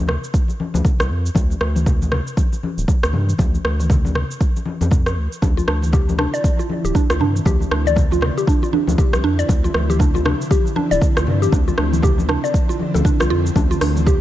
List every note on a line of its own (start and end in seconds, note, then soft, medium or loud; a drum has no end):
0.00 0.17 D2 loud
0.07 cross-stick medium
0.07 muted conga medium
0.07 low conga medium
0.24 shaker medium
0.34 kick loud
0.34 shaker medium
0.48 muted conga soft
0.48 shaker soft
0.60 high conga medium
0.74 0.82 D2 medium
0.74 high conga loud
0.74 shaker medium
0.84 kick loud
0.84 muted conga soft
0.84 low conga medium
0.84 shaker medium
0.99 1.11 C2 medium
0.99 cross-stick medium
0.99 high conga medium
0.99 shaker soft
1.10 1.30 F2 medium
1.26 shaker medium
1.35 1.55 D2 loud
1.35 kick loud
1.35 muted conga soft
1.35 high conga loud
1.35 shaker medium
1.50 high conga medium
1.50 shaker soft
1.61 2.20 D2 loud
1.61 cross-stick medium
1.76 mid tom medium
1.76 muted conga soft
1.76 shaker medium
1.86 kick loud
1.86 low conga medium
1.86 shaker medium
2.02 high conga medium
2.02 shaker soft
2.12 cross-stick medium
2.12 muted conga medium
2.12 low conga medium
2.27 shaker medium
2.37 kick loud
2.37 high conga medium
2.37 shaker medium
2.52 muted conga soft
2.52 shaker soft
2.63 high conga medium
2.77 2.85 D1 loud
2.77 shaker medium
2.88 kick loud
2.88 muted conga medium
2.88 shaker medium
3.03 3.15 D2 medium
3.03 cross-stick medium
3.03 shaker soft
3.13 3.33 G2 medium
3.13 high conga medium
3.13 low conga medium
3.29 mid tom medium
3.29 shaker medium
3.38 3.59 D2 loud
3.38 kick loud
3.38 muted conga medium
3.38 high conga loud
3.38 shaker medium
3.54 high conga medium
3.54 shaker soft
3.64 4.24 D2 loud
3.64 cross-stick medium
3.79 mid tom medium
3.79 muted conga soft
3.79 shaker medium
3.90 kick loud
3.90 mid tom medium
3.90 low conga loud
3.90 shaker medium
4.05 high conga medium
4.05 shaker soft
4.15 cross-stick medium
4.15 muted conga soft
4.15 low conga medium
4.31 shaker medium
4.41 kick loud
4.41 shaker medium
4.56 muted conga soft
4.56 shaker soft
4.65 high conga medium
4.81 5.18 F2 medium
4.81 high conga medium
4.81 shaker medium
4.91 kick loud
4.91 muted conga medium
4.91 low conga medium
4.91 shaker medium
5.06 cross-stick medium
5.06 high conga medium
5.06 shaker soft
5.17 5.28 D2 medium
5.33 shaker medium
5.42 5.62 D2 loud
5.42 14.21 D3 medium
5.42 14.21 F3 medium
5.42 14.21 C4 medium
5.42 5.51 D4 medium
5.42 13.52 E4 medium
5.42 kick loud
5.42 muted conga medium
5.42 high conga medium
5.42 shaker medium
5.57 5.63 F4 medium
5.57 high conga medium
5.57 shaker soft
5.68 6.27 D2 loud
5.68 5.76 D4 medium
5.68 cross-stick medium
5.82 mid tom medium
5.82 muted conga soft
5.82 shaker medium
5.93 6.07 G4 loud
5.93 kick loud
5.93 low conga loud
5.93 shaker medium
6.09 high conga medium
6.09 shaker soft
6.18 6.33 D4 loud
6.18 cross-stick medium
6.18 muted conga medium
6.18 low conga medium
6.34 6.43 D5 loud
6.34 shaker medium
6.44 kick loud
6.44 high conga medium
6.44 shaker medium
6.59 6.69 F4 medium
6.59 muted conga soft
6.59 shaker soft
6.69 high conga medium
6.84 6.92 D1 loud
6.84 6.94 G4 medium
6.84 shaker medium
6.95 7.03 D4 medium
6.95 kick loud
6.95 muted conga medium
6.95 shaker medium
7.10 7.22 D2 medium
7.10 7.16 F4 medium
7.10 cross-stick loud
7.10 shaker soft
7.20 7.40 G2 medium
7.20 7.29 D4 medium
7.20 high conga medium
7.20 low conga medium
7.36 mid tom medium
7.36 shaker medium
7.45 7.65 D2 loud
7.45 7.60 G4 loud
7.45 kick loud
7.45 muted conga soft
7.45 high conga loud
7.45 shaker medium
7.60 high conga medium
7.60 shaker soft
7.71 8.30 D2 loud
7.71 7.86 D4 loud
7.71 cross-stick medium
7.86 7.96 D5 loud
7.86 mid tom medium
7.86 muted conga soft
7.86 shaker medium
7.96 kick loud
7.96 mid tom medium
7.96 low conga medium
7.96 shaker medium
8.11 8.22 F4 medium
8.11 high conga medium
8.11 shaker soft
8.21 cross-stick medium
8.21 muted conga medium
8.21 low conga medium
8.37 8.47 G4 medium
8.37 shaker medium
8.47 8.56 D4 medium
8.47 kick loud
8.47 shaker medium
8.62 8.68 F4 medium
8.62 muted conga soft
8.62 shaker soft
8.73 8.81 D4 medium
8.73 high conga medium
8.87 8.95 D2 medium
8.87 high conga loud
8.87 shaker medium
8.98 9.13 G4 loud
8.98 kick loud
8.98 muted conga soft
8.98 low conga medium
8.98 shaker medium
9.13 9.25 C2 medium
9.13 cross-stick medium
9.13 high conga medium
9.13 shaker soft
9.23 9.43 F2 medium
9.23 9.38 D4 loud
9.39 9.48 D5 loud
9.39 shaker medium
9.49 9.69 D2 loud
9.49 kick loud
9.49 muted conga soft
9.49 high conga loud
9.49 shaker medium
9.64 9.74 F4 medium
9.64 high conga medium
9.64 shaker soft
9.74 10.34 D2 loud
9.74 cross-stick medium
9.89 10.00 G4 medium
9.89 mid tom medium
9.89 muted conga soft
9.89 shaker medium
9.99 10.08 D4 medium
9.99 kick loud
9.99 low conga loud
9.99 shaker medium
10.14 10.21 F4 medium
10.14 high conga medium
10.14 shaker soft
10.25 10.34 D4 medium
10.25 cross-stick medium
10.25 muted conga soft
10.25 low conga medium
10.41 shaker medium
10.51 10.65 G4 loud
10.51 kick loud
10.51 high conga medium
10.51 shaker medium
10.66 muted conga soft
10.66 shaker soft
10.76 10.90 D4 loud
10.76 high conga medium
10.91 10.99 D1 loud
10.91 11.01 D5 loud
10.91 shaker medium
11.01 kick loud
11.01 muted conga soft
11.01 shaker medium
11.17 11.29 D2 medium
11.17 11.27 F4 medium
11.17 cross-stick medium
11.17 shaker soft
11.27 11.47 G2 medium
11.27 high conga medium
11.27 low conga medium
11.42 11.52 G4 medium
11.42 mid tom medium
11.42 shaker medium
11.52 11.72 D2 loud
11.52 11.61 D4 medium
11.52 kick loud
11.52 muted conga soft
11.52 high conga loud
11.52 shaker medium
11.68 11.73 F4 medium
11.68 high conga medium
11.68 shaker soft
11.78 12.37 D2 loud
11.78 11.86 D4 medium
11.78 cross-stick medium
11.93 mid tom medium
11.93 muted conga soft
11.93 shaker medium
12.02 12.18 G4 loud
12.02 kick loud
12.02 mid tom medium
12.02 low conga loud
12.02 shaker medium
12.18 high conga medium
12.18 shaker soft
12.29 12.43 D4 loud
12.29 cross-stick medium
12.29 muted conga medium
12.29 low conga medium
12.44 12.53 D5 loud
12.44 shaker medium
12.54 kick loud
12.54 shaker medium
12.69 12.79 F4 medium
12.69 muted conga soft
12.69 shaker soft
12.79 high conga medium
12.94 13.02 D2 medium
12.94 13.00 A4 medium
12.94 high conga loud
12.94 shaker medium
13.05 13.19 D4 loud
13.05 kick loud
13.05 muted conga soft
13.05 low conga medium
13.05 shaker medium
13.20 13.32 C2 medium
13.20 13.29 F4 medium
13.20 cross-stick medium
13.20 high conga medium
13.20 shaker soft
13.30 13.50 F2 medium
13.30 13.44 F4 loud
13.46 shaker medium
13.56 13.76 D2 loud
13.56 13.64 D4 medium
13.56 14.21 D4 medium
13.56 kick loud
13.56 muted conga soft
13.56 high conga loud
13.56 shaker medium
13.71 13.77 F4 medium
13.71 high conga medium
13.71 shaker soft
13.81 14.21 D2 loud
13.81 13.89 D4 medium
13.81 cross-stick medium
13.81 open hi-hat medium
13.96 mid tom medium
13.96 muted conga soft
13.96 shaker medium
14.06 14.21 G4 loud
14.06 kick loud
14.06 low conga medium
14.06 shaker medium